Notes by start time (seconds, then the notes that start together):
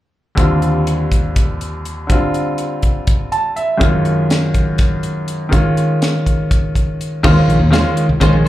0.35 D#2 D3 G3 C4, kick, closed hi-hat
0.40 F4
0.62 closed hi-hat
0.87 closed hi-hat
1.12 kick, closed hi-hat
1.36 kick, closed hi-hat
1.61 closed hi-hat
1.85 closed hi-hat
2.07 D3 G3 C4, kick, closed hi-hat
2.12 F4
2.34 closed hi-hat
2.58 closed hi-hat
2.82 kick, closed hi-hat
3.07 kick, closed hi-hat
3.32 A5, closed hi-hat
3.56 E5, closed hi-hat
3.78 F#2 D#3 G#3 C#4 F4, kick, closed hi-hat
4.05 closed hi-hat
4.30 snare, closed hi-hat
4.54 kick, closed hi-hat
4.78 kick, snare, closed hi-hat
5.03 closed hi-hat
5.28 closed hi-hat
5.49 D#3 G#3 C#4, kick, closed hi-hat
5.53 F4
5.77 closed hi-hat
6.02 snare, closed hi-hat
6.26 kick, closed hi-hat
6.51 kick, closed hi-hat
6.75 kick, closed hi-hat
7.01 closed hi-hat
7.23 D#2 D#3 G#3 C#4 F4 C5, kick, crash
7.48 A#1, closed hi-hat
7.60 D#2
7.70 D#3 G#3 C#4 F4 C5, snare, closed hi-hat
7.97 closed hi-hat
8.09 C#2
8.20 D#3 G#3 C#4 F4 G#4 C5, muted fingered electric bass stroke, kick, closed hi-hat
8.33 A#1
8.44 C5, muted fingered electric bass stroke